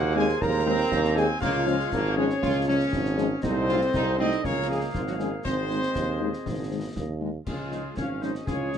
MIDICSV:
0, 0, Header, 1, 8, 480
1, 0, Start_track
1, 0, Key_signature, -5, "major"
1, 0, Tempo, 504202
1, 391, Time_signature, 2, 2, 24, 8
1, 8358, End_track
2, 0, Start_track
2, 0, Title_t, "Trumpet section"
2, 0, Program_c, 0, 61
2, 0, Note_on_c, 0, 78, 127
2, 114, Note_off_c, 0, 78, 0
2, 149, Note_on_c, 0, 80, 124
2, 373, Note_off_c, 0, 80, 0
2, 395, Note_on_c, 0, 82, 127
2, 1108, Note_on_c, 0, 80, 127
2, 1113, Note_off_c, 0, 82, 0
2, 1339, Note_on_c, 0, 77, 127
2, 1349, Note_off_c, 0, 80, 0
2, 2026, Note_off_c, 0, 77, 0
2, 2063, Note_on_c, 0, 73, 122
2, 2786, Note_off_c, 0, 73, 0
2, 3258, Note_on_c, 0, 72, 127
2, 3946, Note_off_c, 0, 72, 0
2, 3986, Note_on_c, 0, 75, 122
2, 4211, Note_off_c, 0, 75, 0
2, 4229, Note_on_c, 0, 73, 127
2, 4464, Note_on_c, 0, 68, 110
2, 4470, Note_off_c, 0, 73, 0
2, 4573, Note_off_c, 0, 68, 0
2, 4710, Note_on_c, 0, 65, 109
2, 4764, Note_off_c, 0, 65, 0
2, 4828, Note_on_c, 0, 66, 95
2, 4882, Note_off_c, 0, 66, 0
2, 4954, Note_on_c, 0, 68, 93
2, 5061, Note_off_c, 0, 68, 0
2, 5187, Note_on_c, 0, 72, 125
2, 6590, Note_off_c, 0, 72, 0
2, 7103, Note_on_c, 0, 68, 99
2, 7552, Note_off_c, 0, 68, 0
2, 7593, Note_on_c, 0, 77, 94
2, 7814, Note_off_c, 0, 77, 0
2, 7833, Note_on_c, 0, 75, 86
2, 8066, Note_on_c, 0, 73, 101
2, 8071, Note_off_c, 0, 75, 0
2, 8358, Note_off_c, 0, 73, 0
2, 8358, End_track
3, 0, Start_track
3, 0, Title_t, "Woodwind section"
3, 0, Program_c, 1, 71
3, 0, Note_on_c, 1, 68, 100
3, 0, Note_on_c, 1, 72, 101
3, 1307, Note_off_c, 1, 68, 0
3, 1307, Note_off_c, 1, 72, 0
3, 1350, Note_on_c, 1, 73, 99
3, 1352, Note_on_c, 1, 68, 105
3, 3232, Note_off_c, 1, 73, 0
3, 3233, Note_off_c, 1, 68, 0
3, 3266, Note_on_c, 1, 75, 87
3, 3267, Note_on_c, 1, 69, 85
3, 4190, Note_off_c, 1, 69, 0
3, 4190, Note_off_c, 1, 75, 0
3, 4229, Note_on_c, 1, 68, 88
3, 4229, Note_on_c, 1, 77, 87
3, 5179, Note_off_c, 1, 68, 0
3, 5189, Note_off_c, 1, 77, 0
3, 5190, Note_on_c, 1, 68, 86
3, 5190, Note_on_c, 1, 75, 78
3, 6831, Note_off_c, 1, 68, 0
3, 6831, Note_off_c, 1, 75, 0
3, 7100, Note_on_c, 1, 65, 77
3, 7551, Note_off_c, 1, 65, 0
3, 7585, Note_on_c, 1, 73, 87
3, 7694, Note_off_c, 1, 73, 0
3, 7822, Note_on_c, 1, 72, 86
3, 7931, Note_off_c, 1, 72, 0
3, 8059, Note_on_c, 1, 68, 85
3, 8358, Note_off_c, 1, 68, 0
3, 8358, End_track
4, 0, Start_track
4, 0, Title_t, "Euphonium"
4, 0, Program_c, 2, 58
4, 0, Note_on_c, 2, 66, 127
4, 150, Note_on_c, 2, 68, 123
4, 164, Note_off_c, 2, 66, 0
4, 383, Note_off_c, 2, 68, 0
4, 389, Note_on_c, 2, 70, 127
4, 1072, Note_off_c, 2, 70, 0
4, 1110, Note_on_c, 2, 68, 123
4, 1218, Note_off_c, 2, 68, 0
4, 1346, Note_on_c, 2, 65, 127
4, 2030, Note_off_c, 2, 65, 0
4, 2062, Note_on_c, 2, 61, 119
4, 2748, Note_off_c, 2, 61, 0
4, 3264, Note_on_c, 2, 60, 126
4, 3983, Note_on_c, 2, 63, 110
4, 3998, Note_off_c, 2, 60, 0
4, 4219, Note_on_c, 2, 61, 110
4, 4233, Note_off_c, 2, 63, 0
4, 4461, Note_on_c, 2, 56, 98
4, 4475, Note_off_c, 2, 61, 0
4, 4689, Note_off_c, 2, 56, 0
4, 4694, Note_on_c, 2, 53, 85
4, 4752, Note_off_c, 2, 53, 0
4, 4817, Note_on_c, 2, 54, 91
4, 4933, Note_off_c, 2, 54, 0
4, 4938, Note_on_c, 2, 56, 95
4, 5049, Note_off_c, 2, 56, 0
4, 5192, Note_on_c, 2, 60, 105
4, 6592, Note_off_c, 2, 60, 0
4, 7112, Note_on_c, 2, 56, 81
4, 7557, Note_off_c, 2, 56, 0
4, 7595, Note_on_c, 2, 65, 75
4, 7701, Note_off_c, 2, 65, 0
4, 7831, Note_on_c, 2, 63, 82
4, 7939, Note_off_c, 2, 63, 0
4, 8075, Note_on_c, 2, 61, 92
4, 8358, Note_off_c, 2, 61, 0
4, 8358, End_track
5, 0, Start_track
5, 0, Title_t, "Trombone section"
5, 0, Program_c, 3, 61
5, 0, Note_on_c, 3, 58, 116
5, 386, Note_on_c, 3, 56, 107
5, 392, Note_off_c, 3, 58, 0
5, 629, Note_off_c, 3, 56, 0
5, 633, Note_on_c, 3, 60, 120
5, 1314, Note_off_c, 3, 60, 0
5, 1353, Note_on_c, 3, 58, 115
5, 1575, Note_off_c, 3, 58, 0
5, 1596, Note_on_c, 3, 56, 108
5, 1831, Note_on_c, 3, 58, 117
5, 1833, Note_off_c, 3, 56, 0
5, 2071, Note_off_c, 3, 58, 0
5, 2074, Note_on_c, 3, 56, 103
5, 2182, Note_off_c, 3, 56, 0
5, 2313, Note_on_c, 3, 65, 117
5, 2535, Note_off_c, 3, 65, 0
5, 2550, Note_on_c, 3, 61, 121
5, 3232, Note_off_c, 3, 61, 0
5, 3267, Note_on_c, 3, 63, 108
5, 3509, Note_off_c, 3, 63, 0
5, 3516, Note_on_c, 3, 65, 110
5, 3623, Note_off_c, 3, 65, 0
5, 3753, Note_on_c, 3, 63, 112
5, 3975, Note_off_c, 3, 63, 0
5, 3984, Note_on_c, 3, 60, 102
5, 4210, Note_off_c, 3, 60, 0
5, 4227, Note_on_c, 3, 58, 106
5, 5150, Note_off_c, 3, 58, 0
5, 5188, Note_on_c, 3, 56, 88
5, 6831, Note_off_c, 3, 56, 0
5, 7105, Note_on_c, 3, 65, 76
5, 7214, Note_off_c, 3, 65, 0
5, 7342, Note_on_c, 3, 63, 79
5, 7451, Note_off_c, 3, 63, 0
5, 7586, Note_on_c, 3, 61, 82
5, 8034, Note_off_c, 3, 61, 0
5, 8070, Note_on_c, 3, 65, 77
5, 8293, Note_off_c, 3, 65, 0
5, 8308, Note_on_c, 3, 63, 83
5, 8358, Note_off_c, 3, 63, 0
5, 8358, End_track
6, 0, Start_track
6, 0, Title_t, "French horn section"
6, 0, Program_c, 4, 60
6, 149, Note_on_c, 4, 56, 105
6, 152, Note_on_c, 4, 60, 95
6, 153, Note_on_c, 4, 51, 98
6, 236, Note_off_c, 4, 56, 0
6, 238, Note_off_c, 4, 60, 0
6, 239, Note_off_c, 4, 51, 0
6, 631, Note_on_c, 4, 60, 80
6, 632, Note_on_c, 4, 51, 94
6, 634, Note_on_c, 4, 56, 85
6, 717, Note_off_c, 4, 60, 0
6, 718, Note_off_c, 4, 51, 0
6, 720, Note_off_c, 4, 56, 0
6, 1108, Note_on_c, 4, 56, 99
6, 1109, Note_on_c, 4, 51, 99
6, 1112, Note_on_c, 4, 60, 97
6, 1195, Note_off_c, 4, 56, 0
6, 1196, Note_off_c, 4, 51, 0
6, 1198, Note_off_c, 4, 60, 0
6, 1586, Note_on_c, 4, 53, 94
6, 1587, Note_on_c, 4, 56, 87
6, 1587, Note_on_c, 4, 61, 85
6, 1673, Note_off_c, 4, 53, 0
6, 1674, Note_off_c, 4, 61, 0
6, 1675, Note_off_c, 4, 56, 0
6, 2062, Note_on_c, 4, 56, 96
6, 2063, Note_on_c, 4, 53, 99
6, 2064, Note_on_c, 4, 61, 95
6, 2150, Note_off_c, 4, 56, 0
6, 2151, Note_off_c, 4, 53, 0
6, 2152, Note_off_c, 4, 61, 0
6, 2551, Note_on_c, 4, 53, 77
6, 2553, Note_on_c, 4, 56, 85
6, 2554, Note_on_c, 4, 61, 84
6, 2637, Note_off_c, 4, 53, 0
6, 2639, Note_off_c, 4, 56, 0
6, 2639, Note_off_c, 4, 61, 0
6, 3025, Note_on_c, 4, 61, 92
6, 3026, Note_on_c, 4, 53, 94
6, 3026, Note_on_c, 4, 56, 93
6, 3112, Note_off_c, 4, 61, 0
6, 3113, Note_off_c, 4, 56, 0
6, 3114, Note_off_c, 4, 53, 0
6, 3508, Note_on_c, 4, 63, 81
6, 3510, Note_on_c, 4, 57, 78
6, 3511, Note_on_c, 4, 54, 80
6, 3595, Note_off_c, 4, 63, 0
6, 3596, Note_off_c, 4, 57, 0
6, 3597, Note_off_c, 4, 54, 0
6, 3995, Note_on_c, 4, 57, 84
6, 3996, Note_on_c, 4, 54, 81
6, 3996, Note_on_c, 4, 63, 89
6, 4080, Note_off_c, 4, 57, 0
6, 4081, Note_off_c, 4, 54, 0
6, 4081, Note_off_c, 4, 63, 0
6, 4472, Note_on_c, 4, 56, 73
6, 4475, Note_on_c, 4, 61, 67
6, 4478, Note_on_c, 4, 53, 71
6, 4558, Note_off_c, 4, 56, 0
6, 4560, Note_off_c, 4, 61, 0
6, 4563, Note_off_c, 4, 53, 0
6, 4956, Note_on_c, 4, 56, 72
6, 4956, Note_on_c, 4, 61, 70
6, 4957, Note_on_c, 4, 53, 84
6, 5041, Note_off_c, 4, 56, 0
6, 5041, Note_off_c, 4, 61, 0
6, 5042, Note_off_c, 4, 53, 0
6, 5432, Note_on_c, 4, 51, 69
6, 5432, Note_on_c, 4, 63, 67
6, 5433, Note_on_c, 4, 56, 62
6, 5518, Note_off_c, 4, 51, 0
6, 5518, Note_off_c, 4, 63, 0
6, 5519, Note_off_c, 4, 56, 0
6, 5907, Note_on_c, 4, 51, 75
6, 5908, Note_on_c, 4, 63, 76
6, 5911, Note_on_c, 4, 56, 76
6, 5994, Note_off_c, 4, 51, 0
6, 5995, Note_off_c, 4, 63, 0
6, 5997, Note_off_c, 4, 56, 0
6, 6385, Note_on_c, 4, 63, 61
6, 6387, Note_on_c, 4, 56, 62
6, 6388, Note_on_c, 4, 51, 60
6, 6473, Note_off_c, 4, 63, 0
6, 6474, Note_off_c, 4, 56, 0
6, 6475, Note_off_c, 4, 51, 0
6, 6863, Note_on_c, 4, 56, 75
6, 6864, Note_on_c, 4, 51, 70
6, 6867, Note_on_c, 4, 63, 74
6, 6951, Note_off_c, 4, 56, 0
6, 6952, Note_off_c, 4, 51, 0
6, 6954, Note_off_c, 4, 63, 0
6, 7345, Note_on_c, 4, 56, 52
6, 7346, Note_on_c, 4, 61, 58
6, 7348, Note_on_c, 4, 53, 59
6, 7432, Note_off_c, 4, 56, 0
6, 7433, Note_off_c, 4, 61, 0
6, 7435, Note_off_c, 4, 53, 0
6, 7829, Note_on_c, 4, 53, 63
6, 7830, Note_on_c, 4, 61, 62
6, 7831, Note_on_c, 4, 56, 64
6, 7916, Note_off_c, 4, 53, 0
6, 7916, Note_off_c, 4, 61, 0
6, 7917, Note_off_c, 4, 56, 0
6, 8307, Note_on_c, 4, 56, 59
6, 8310, Note_on_c, 4, 61, 58
6, 8311, Note_on_c, 4, 53, 58
6, 8358, Note_off_c, 4, 53, 0
6, 8358, Note_off_c, 4, 56, 0
6, 8358, Note_off_c, 4, 61, 0
6, 8358, End_track
7, 0, Start_track
7, 0, Title_t, "Tuba"
7, 0, Program_c, 5, 58
7, 0, Note_on_c, 5, 39, 120
7, 313, Note_off_c, 5, 39, 0
7, 389, Note_on_c, 5, 39, 116
7, 790, Note_off_c, 5, 39, 0
7, 865, Note_on_c, 5, 39, 127
7, 1267, Note_off_c, 5, 39, 0
7, 1344, Note_on_c, 5, 37, 115
7, 1747, Note_off_c, 5, 37, 0
7, 1824, Note_on_c, 5, 32, 117
7, 2227, Note_off_c, 5, 32, 0
7, 2305, Note_on_c, 5, 37, 113
7, 2707, Note_off_c, 5, 37, 0
7, 2781, Note_on_c, 5, 32, 112
7, 3185, Note_off_c, 5, 32, 0
7, 3269, Note_on_c, 5, 36, 118
7, 3669, Note_off_c, 5, 36, 0
7, 3746, Note_on_c, 5, 36, 111
7, 4148, Note_off_c, 5, 36, 0
7, 4230, Note_on_c, 5, 37, 102
7, 4629, Note_off_c, 5, 37, 0
7, 4710, Note_on_c, 5, 32, 94
7, 5110, Note_off_c, 5, 32, 0
7, 5188, Note_on_c, 5, 32, 95
7, 5589, Note_off_c, 5, 32, 0
7, 5665, Note_on_c, 5, 39, 93
7, 6025, Note_off_c, 5, 39, 0
7, 6145, Note_on_c, 5, 32, 88
7, 6547, Note_off_c, 5, 32, 0
7, 6628, Note_on_c, 5, 39, 92
7, 7029, Note_off_c, 5, 39, 0
7, 7112, Note_on_c, 5, 37, 73
7, 7511, Note_off_c, 5, 37, 0
7, 7592, Note_on_c, 5, 32, 80
7, 7990, Note_off_c, 5, 32, 0
7, 8069, Note_on_c, 5, 37, 79
7, 8358, Note_off_c, 5, 37, 0
7, 8358, End_track
8, 0, Start_track
8, 0, Title_t, "Drums"
8, 275, Note_on_c, 9, 38, 60
8, 370, Note_off_c, 9, 38, 0
8, 396, Note_on_c, 9, 35, 96
8, 396, Note_on_c, 9, 38, 77
8, 491, Note_off_c, 9, 35, 0
8, 491, Note_off_c, 9, 38, 0
8, 874, Note_on_c, 9, 35, 84
8, 874, Note_on_c, 9, 38, 90
8, 969, Note_off_c, 9, 35, 0
8, 969, Note_off_c, 9, 38, 0
8, 996, Note_on_c, 9, 38, 61
8, 1091, Note_off_c, 9, 38, 0
8, 1115, Note_on_c, 9, 38, 60
8, 1210, Note_off_c, 9, 38, 0
8, 1350, Note_on_c, 9, 35, 93
8, 1350, Note_on_c, 9, 38, 78
8, 1350, Note_on_c, 9, 49, 35
8, 1446, Note_off_c, 9, 35, 0
8, 1446, Note_off_c, 9, 38, 0
8, 1446, Note_off_c, 9, 49, 0
8, 1591, Note_on_c, 9, 38, 56
8, 1686, Note_off_c, 9, 38, 0
8, 1710, Note_on_c, 9, 38, 57
8, 1806, Note_off_c, 9, 38, 0
8, 1830, Note_on_c, 9, 35, 83
8, 1830, Note_on_c, 9, 38, 88
8, 1925, Note_off_c, 9, 35, 0
8, 1925, Note_off_c, 9, 38, 0
8, 2190, Note_on_c, 9, 38, 55
8, 2286, Note_off_c, 9, 38, 0
8, 2311, Note_on_c, 9, 35, 94
8, 2311, Note_on_c, 9, 38, 75
8, 2407, Note_off_c, 9, 35, 0
8, 2407, Note_off_c, 9, 38, 0
8, 2788, Note_on_c, 9, 35, 93
8, 2788, Note_on_c, 9, 38, 84
8, 2883, Note_off_c, 9, 35, 0
8, 2883, Note_off_c, 9, 38, 0
8, 2906, Note_on_c, 9, 38, 55
8, 3001, Note_off_c, 9, 38, 0
8, 3027, Note_on_c, 9, 38, 64
8, 3123, Note_off_c, 9, 38, 0
8, 3267, Note_on_c, 9, 35, 97
8, 3267, Note_on_c, 9, 38, 84
8, 3267, Note_on_c, 9, 49, 36
8, 3363, Note_off_c, 9, 35, 0
8, 3363, Note_off_c, 9, 38, 0
8, 3363, Note_off_c, 9, 49, 0
8, 3512, Note_on_c, 9, 38, 59
8, 3607, Note_off_c, 9, 38, 0
8, 3631, Note_on_c, 9, 38, 59
8, 3726, Note_off_c, 9, 38, 0
8, 3752, Note_on_c, 9, 35, 91
8, 3752, Note_on_c, 9, 38, 80
8, 3847, Note_off_c, 9, 35, 0
8, 3847, Note_off_c, 9, 38, 0
8, 4110, Note_on_c, 9, 38, 54
8, 4205, Note_off_c, 9, 38, 0
8, 4230, Note_on_c, 9, 35, 88
8, 4230, Note_on_c, 9, 38, 69
8, 4325, Note_off_c, 9, 35, 0
8, 4325, Note_off_c, 9, 38, 0
8, 4707, Note_on_c, 9, 35, 90
8, 4707, Note_on_c, 9, 38, 80
8, 4803, Note_off_c, 9, 35, 0
8, 4803, Note_off_c, 9, 38, 0
8, 4830, Note_on_c, 9, 38, 57
8, 4926, Note_off_c, 9, 38, 0
8, 4947, Note_on_c, 9, 38, 62
8, 5042, Note_off_c, 9, 38, 0
8, 5188, Note_on_c, 9, 35, 88
8, 5188, Note_on_c, 9, 38, 85
8, 5188, Note_on_c, 9, 49, 35
8, 5284, Note_off_c, 9, 35, 0
8, 5284, Note_off_c, 9, 38, 0
8, 5284, Note_off_c, 9, 49, 0
8, 5430, Note_on_c, 9, 38, 53
8, 5525, Note_off_c, 9, 38, 0
8, 5549, Note_on_c, 9, 38, 61
8, 5644, Note_off_c, 9, 38, 0
8, 5668, Note_on_c, 9, 35, 80
8, 5668, Note_on_c, 9, 38, 85
8, 5764, Note_off_c, 9, 35, 0
8, 5764, Note_off_c, 9, 38, 0
8, 6030, Note_on_c, 9, 38, 55
8, 6125, Note_off_c, 9, 38, 0
8, 6152, Note_on_c, 9, 35, 91
8, 6152, Note_on_c, 9, 38, 75
8, 6247, Note_off_c, 9, 35, 0
8, 6247, Note_off_c, 9, 38, 0
8, 6629, Note_on_c, 9, 35, 79
8, 6629, Note_on_c, 9, 38, 81
8, 6724, Note_off_c, 9, 35, 0
8, 6724, Note_off_c, 9, 38, 0
8, 7108, Note_on_c, 9, 35, 86
8, 7108, Note_on_c, 9, 49, 54
8, 7204, Note_off_c, 9, 35, 0
8, 7204, Note_off_c, 9, 49, 0
8, 7349, Note_on_c, 9, 38, 52
8, 7444, Note_off_c, 9, 38, 0
8, 7588, Note_on_c, 9, 35, 82
8, 7588, Note_on_c, 9, 38, 74
8, 7683, Note_off_c, 9, 35, 0
8, 7683, Note_off_c, 9, 38, 0
8, 7831, Note_on_c, 9, 38, 60
8, 7926, Note_off_c, 9, 38, 0
8, 7949, Note_on_c, 9, 38, 55
8, 8045, Note_off_c, 9, 38, 0
8, 8067, Note_on_c, 9, 35, 89
8, 8067, Note_on_c, 9, 38, 78
8, 8162, Note_off_c, 9, 35, 0
8, 8162, Note_off_c, 9, 38, 0
8, 8309, Note_on_c, 9, 38, 53
8, 8358, Note_off_c, 9, 38, 0
8, 8358, End_track
0, 0, End_of_file